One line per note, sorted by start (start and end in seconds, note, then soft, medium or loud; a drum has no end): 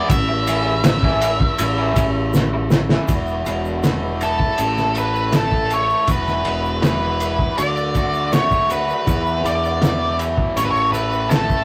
0.00 0.11 E3 medium
0.00 0.10 G#3 medium
0.00 0.10 B3 medium
0.00 3.05 E4 medium
0.09 1.43 A1 medium
0.09 3.06 E3 medium
0.09 3.06 A3 medium
0.09 3.06 C#4 medium
0.09 2.30 E5 loud
0.09 kick loud
0.09 ride medium
0.09 shaker medium
0.29 muted overdriven electric guitar stroke medium
0.47 0.71 E3 medium
0.47 0.72 A3 medium
0.47 0.72 C#4 medium
0.47 0.72 E4 loud
0.47 ride medium
0.47 shaker medium
0.84 muted overdriven electric guitar stroke soft
0.84 snare loud
0.84 ride medium
0.84 shaker medium
1.03 1.28 E3 medium
1.03 1.28 A3 medium
1.03 1.28 C#4 medium
1.03 1.28 E4 medium
1.03 kick medium
1.21 ride medium
1.21 shaker medium
1.40 kick medium
1.58 1.93 A1 medium
1.58 muted overdriven electric guitar stroke soft
1.58 ride medium
1.58 shaker medium
1.78 2.03 E3 medium
1.78 2.03 A3 medium
1.78 2.03 C#4 medium
1.78 2.02 E4 medium
1.96 2.96 A1 medium
1.96 kick medium
1.96 ride medium
1.96 shaker medium
2.34 snare medium
2.34 shaker medium
2.54 muted overdriven electric guitar stroke medium
2.70 snare medium
2.70 shaker medium
2.89 3.10 E3 medium
2.89 3.10 A3 medium
2.89 3.09 C#4 medium
2.89 3.09 E4 medium
2.89 snare medium
3.08 3.42 E1 medium
3.08 4.59 E2 medium
3.08 6.05 E3 medium
3.08 4.57 F#3 medium
3.08 4.57 B3 medium
3.08 7.54 E4 medium
3.08 kick loud
3.08 ride medium
3.08 shaker medium
3.27 shaker soft
3.46 4.46 E1 medium
3.46 4.58 B2 medium
3.46 ride medium
3.46 shaker medium
3.65 shaker soft
3.84 4.59 E3 medium
3.84 snare medium
3.84 ride medium
3.84 shaker medium
4.21 4.59 E4 medium
4.21 4.99 A4 medium
4.21 ride medium
4.21 shaker medium
4.39 kick medium
4.58 5.92 A1 medium
4.58 6.08 A2 medium
4.58 6.07 A3 medium
4.58 6.07 C#4 medium
4.58 ride medium
4.58 shaker medium
4.77 snare soft
4.77 shaker soft
4.95 5.70 A4 medium
4.95 5.36 B4 medium
4.95 ride medium
4.95 shaker medium
5.16 shaker soft
5.32 6.09 A3 medium
5.32 5.73 A4 medium
5.32 snare loud
5.32 ride medium
5.32 shaker medium
5.52 kick medium
5.70 6.09 A4 medium
5.70 6.11 C#5 medium
5.70 ride medium
5.70 shaker medium
5.90 shaker soft
6.07 6.41 E1 medium
6.07 7.58 E2 medium
6.07 10.53 F#3 medium
6.07 7.57 B3 medium
6.07 10.53 F#4 medium
6.07 kick medium
6.07 ride medium
6.07 shaker medium
6.11 6.83 B4 medium
6.26 snare soft
6.26 shaker soft
6.45 7.46 E1 medium
6.45 7.58 B2 medium
6.45 ride medium
6.65 shaker soft
6.82 7.58 E3 medium
6.82 7.55 B4 medium
6.82 snare loud
6.82 ride medium
6.82 shaker medium
7.20 7.58 E4 medium
7.20 ride medium
7.20 shaker medium
7.39 kick medium
7.57 8.91 D2 medium
7.57 9.08 D3 medium
7.57 9.06 A3 medium
7.57 9.06 D4 medium
7.57 8.33 D5 medium
7.57 ride medium
7.57 shaker medium
7.77 shaker soft
7.95 8.69 F#4 medium
7.95 kick medium
7.95 ride medium
7.95 shaker medium
8.14 shaker soft
8.33 9.08 A3 medium
8.33 8.71 C#5 loud
8.33 snare loud
8.33 ride medium
8.33 shaker medium
8.51 kick medium
8.51 shaker soft
8.70 9.08 F#4 medium
8.70 9.45 B4 medium
8.70 ride medium
8.70 shaker medium
8.89 shaker soft
9.07 9.41 E2 medium
9.07 10.57 E2 medium
9.07 10.56 B3 medium
9.07 10.55 E4 medium
9.07 kick loud
9.07 ride medium
9.07 shaker loud
9.27 shaker soft
9.44 10.44 E2 medium
9.44 10.56 B2 medium
9.44 10.16 D5 medium
9.44 ride medium
9.44 shaker medium
9.65 shaker soft
9.82 10.57 E3 medium
9.82 snare loud
9.82 ride medium
9.82 shaker medium
10.19 10.57 E4 medium
10.19 ride medium
10.19 shaker medium
10.38 kick medium
10.56 11.64 A1 medium
10.56 11.64 A2 medium
10.56 11.64 A3 medium
10.56 11.64 C#4 medium
10.56 11.64 E4 medium
10.56 11.64 A4 medium
10.56 10.64 C#5 medium
10.56 ride medium
10.56 shaker medium
10.65 10.70 B4 medium
10.71 10.92 C#5 medium
10.76 shaker soft
10.92 11.64 A4 medium
10.92 11.32 B4 medium
10.92 ride medium
10.92 shaker medium
11.12 shaker soft
11.29 11.64 A3 medium
11.29 11.64 A4 medium
11.29 snare loud
11.29 ride medium
11.29 shaker medium
11.50 kick medium
11.50 shaker soft